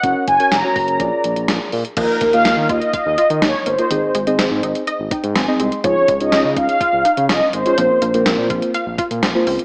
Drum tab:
CC |----------------|x---------------|----------------|----------------|
HH |x-xxx-oxx-xxx-ox|x-xxx-xxx-xxx-xx|x-xxx-xxx-xxx-xx|x-xxx-xxx-xxx-xx|
SD |----o-------o---|----o-------o---|----o-------o---|----o-------o---|
BD |o-o---o-o-------|o-o---o-o-------|----------o-----|o-o---o-o-------|

CC |----------------|
HH |x-xxx-xxx-xxx-ox|
SD |----o-------o---|
BD |------o---o-----|